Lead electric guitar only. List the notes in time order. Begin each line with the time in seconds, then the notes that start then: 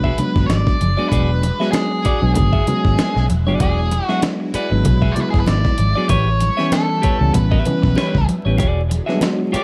Already playing: B4
0.46 D5
1.09 B4
1.72 G#4
2.34 G#4
3.61 G#4
4.06 F#4
4.55 B4
5.12 D5
5.20 B4
5.30 G#4
5.40 B4
5.48 D5
6.10 C#5
6.73 A4
7.35 B4
9.56 D5